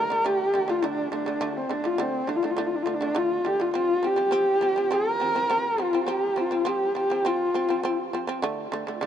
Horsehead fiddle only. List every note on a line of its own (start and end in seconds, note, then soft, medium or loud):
0.00 0.27 A#4 medium
0.26 0.71 G4 medium
0.70 0.86 F4 medium
0.85 1.13 D4 medium
1.13 1.58 D4 medium
1.57 1.75 C4 medium
1.73 1.87 D4 medium
1.86 2.03 F4 medium
2.01 2.30 C4 medium
2.28 2.37 D4 medium
2.36 2.46 F4 medium
2.44 2.52 D4 medium
2.50 2.61 F4 medium
2.60 2.68 D4 medium
2.66 2.77 F4 medium
2.75 2.84 D4 medium
2.83 2.96 F4 medium
2.94 3.19 D4 medium
3.18 3.48 F4 medium
3.47 3.62 G4 medium
3.61 3.74 F4 medium
3.75 4.08 F4 medium
4.06 4.96 G4 medium
4.94 5.83 A#4 medium
5.82 6.12 F4 medium
6.10 6.42 G4 medium
6.41 6.69 F4 medium
6.68 6.97 G4 medium
6.97 7.28 G4 medium
7.27 8.14 F4 medium